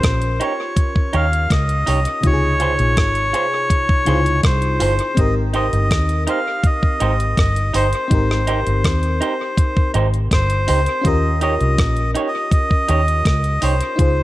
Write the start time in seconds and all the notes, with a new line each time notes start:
Already playing: C#4 F4 G4 A#4 C5
0.03 A#1, kick, cross-stick, closed hi-hat
0.22 closed hi-hat
0.40 D#4 G4 C#5, closed hi-hat
0.77 kick, closed hi-hat
0.96 kick
1.13 D#2 D#4 G4 C#5 F5, closed hi-hat
1.33 closed hi-hat
1.50 C#2 D#5, kick, cross-stick, closed hi-hat
1.69 closed hi-hat
1.86 C2 D#4 G4 C#5, open hi-hat
2.05 closed hi-hat
2.21 C#2 C3 D#4 F4, kick, closed hi-hat
2.26 G4 C#5
2.33 G#4
2.60 F4 G#4 C5, closed hi-hat
2.79 A#1, closed hi-hat
2.97 G#1, kick, cross-stick, closed hi-hat
3.15 closed hi-hat
3.33 F4 G#4 C5, closed hi-hat
3.70 kick, closed hi-hat
3.89 kick
4.05 C#2 C3 D#4 E4 F4 G#4 C5, closed hi-hat
4.14 F4
4.26 closed hi-hat
4.43 C2 C5, kick, cross-stick, closed hi-hat
4.62 closed hi-hat
4.80 G1 F4 G#4 C5, open hi-hat
4.99 closed hi-hat
5.15 G#1 C4 D#4 G4 D#5, kick, closed hi-hat
5.20 A#4
5.53 D#4 G4 C5 D#5, closed hi-hat
5.73 G1, closed hi-hat
5.91 D#2, kick, cross-stick, closed hi-hat
6.09 closed hi-hat
6.27 D#4 G4 C5 F5, closed hi-hat
6.64 D#5, kick, closed hi-hat
6.83 kick
7.00 G#1 D#4 G4 C5, closed hi-hat
7.20 closed hi-hat
7.37 G1 D#5, kick, cross-stick, closed hi-hat
7.56 closed hi-hat
7.74 G1 D#4 G4 C5, open hi-hat
7.93 closed hi-hat
8.08 G#1 C4 D#4, kick, closed hi-hat
8.12 G4 A#4
8.31 cross-stick
8.47 D#4 G4 C5, closed hi-hat
8.67 G1, closed hi-hat
8.84 D#2, kick, cross-stick, closed hi-hat
9.03 closed hi-hat
9.21 D#4 G4 C5, closed hi-hat
9.57 kick, closed hi-hat
9.77 kick
9.94 G#1 D#4 G4 C5, closed hi-hat
10.14 closed hi-hat
10.31 G1 C5, kick, cross-stick, closed hi-hat
10.50 closed hi-hat
10.68 C#2 D#4 G4 C5, open hi-hat
10.86 closed hi-hat
11.01 D#2 C#4 F4, kick, closed hi-hat
11.06 G4 A#4 D#5
11.41 D#4 G4 C#5 D#5, closed hi-hat
11.61 C2, closed hi-hat
11.78 A#1, kick, cross-stick, closed hi-hat
11.97 closed hi-hat
12.15 D#4 G4 C#5, closed hi-hat
12.28 D#5
12.51 D#5, kick, closed hi-hat
12.71 kick
12.88 D#2 D#4 G4 C#5, closed hi-hat
13.08 closed hi-hat
13.25 C#2, kick, cross-stick, closed hi-hat
13.44 closed hi-hat
13.62 C2 D#4 G4 C5 C#5, open hi-hat
13.81 closed hi-hat
13.96 C#2 D#4 F4, kick, closed hi-hat
14.00 G#4 C5